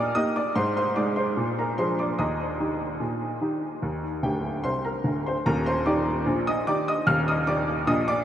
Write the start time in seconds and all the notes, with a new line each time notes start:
Already playing: D5 D6
0.15 A#3 D#4 G4 D#5 D#6
0.36 D5 D6
0.55 G#2 C5 C6
0.77 C5 C6
0.96 G#3 D#4 G#4 D5 D6
1.16 C5 C6
1.37 A#2
1.59 A#4 A#5
1.78 F3 D4 G#4 C5 C6
1.99 D5 D6
2.19 D#2 D#5 A#5 D#6
2.60 D#3 D#4 G4
3.00 A#2
3.41 D#3 D#4 G4
3.82 D#2
4.23 D1 D2 G4 G5
4.64 C2 C5 C6
4.85 A#4 A#5
5.04 D1 D2
5.27 C5 C6
5.46 D#1 D#2 A#4 A#5
5.66 C5 C6
5.86 D#3 D#4 G4 D5 D6
6.26 A#1 A#2
6.47 D#5 D#6
6.67 D#3 D#4 G4 D5 D6
6.88 D#5 D#6
7.07 D#1 D#2 F5 F6
7.28 D#5 D#6
7.47 D#3 D#4 G4 D5 D6
7.87 A#1 A#2 D#5 D#6
8.08 D5 D6